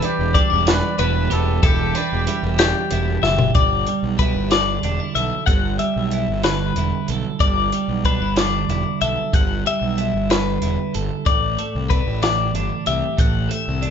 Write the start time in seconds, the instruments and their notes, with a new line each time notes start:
Already playing: clean electric guitar E3 G3 E4 B4
0.02 clean electric guitar D4, trumpet G4, closed hi-hat
0.19 fingered electric bass E1
0.34 clean electric guitar G3 D4 D5, kick, closed hi-hat
0.50 fingered electric bass E1, clean electric guitar E4
0.67 clean electric guitar D4, trumpet B4, snare, closed hi-hat
0.99 fingered electric bass E1, clean electric guitar B2 E4 B4, trumpet B4, closed hi-hat
1.30 fingered electric bass E1, clean electric guitar G4, trumpet A4, closed hi-hat
1.63 fingered electric bass E1, clean electric guitar E3 E4 A4, trumpet G4, kick, closed hi-hat
1.95 clean electric guitar D4 B4, closed hi-hat
2.12 fingered electric bass E1
2.27 clean electric guitar G3 E4, closed hi-hat
2.43 fingered electric bass E1
2.59 clean electric guitar D4 G4, snare, closed hi-hat
2.91 fingered electric bass E1, clean electric guitar B2 E4, closed hi-hat
3.23 fingered electric bass F#1, clean electric guitar E5, snare
3.27 clean electric guitar G4
3.39 floor tom
3.55 fingered electric bass G1, clean electric guitar G2 D5, kick, closed hi-hat
3.86 clean electric guitar G3, closed hi-hat
4.03 fingered electric bass B1
4.19 clean electric guitar E4 B4, kick, closed hi-hat
4.35 fingered electric bass G1
4.51 clean electric guitar D3 D5, snare, closed hi-hat
4.83 fingered electric bass E1, clean electric guitar D4, closed hi-hat
5.00 clean electric guitar E4
5.15 fingered electric bass B1, clean electric guitar A4 E5, closed hi-hat
5.46 fingered electric bass G1, clean electric guitar G2 F#5, kick, closed hi-hat
5.79 clean electric guitar G3 E5, closed hi-hat
5.96 fingered electric bass B1
6.11 clean electric guitar E4, closed hi-hat
6.28 fingered electric bass G1
6.43 clean electric guitar D3 B4, snare, closed hi-hat
6.76 fingered electric bass E1, clean electric guitar E4, closed hi-hat
7.08 fingered electric bass B1, clean electric guitar A4, closed hi-hat
7.40 fingered electric bass G1, clean electric guitar G2 D5, kick, closed hi-hat
7.72 clean electric guitar G3, closed hi-hat
7.88 fingered electric bass B1
8.05 clean electric guitar D4 B4, kick, closed hi-hat
8.20 fingered electric bass G1, clean electric guitar E4
8.36 clean electric guitar D3 D5, snare, closed hi-hat
8.69 fingered electric bass E1, clean electric guitar E4, closed hi-hat
9.01 fingered electric bass B1, clean electric guitar A4 E5, closed hi-hat
9.33 fingered electric bass G1, clean electric guitar G2 F#5, kick, closed hi-hat
9.66 clean electric guitar G3 E5, closed hi-hat
9.81 fingered electric bass B1
9.98 clean electric guitar E4, closed hi-hat
10.14 fingered electric bass G1
10.30 clean electric guitar D3 B4, snare, closed hi-hat
10.62 fingered electric bass E1, clean electric guitar E4, closed hi-hat
10.94 fingered electric bass G1, clean electric guitar A4, closed hi-hat
11.26 fingered electric bass A1, clean electric guitar A2 D5, kick, closed hi-hat
11.58 clean electric guitar A3, closed hi-hat
11.75 fingered electric bass C2
11.90 clean electric guitar D4 B4, kick, closed hi-hat
12.06 fingered electric bass A1
12.23 clean electric guitar E3 D5, snare, closed hi-hat
12.54 fingered electric bass G1, clean electric guitar D4, closed hi-hat
12.86 fingered electric bass C2, clean electric guitar G4 E5, closed hi-hat
13.17 fingered electric bass A1, clean electric guitar A2 F#5, kick, closed hi-hat
13.49 clean electric guitar A3 E5, closed hi-hat
13.68 fingered electric bass C2
13.82 clean electric guitar D4, closed hi-hat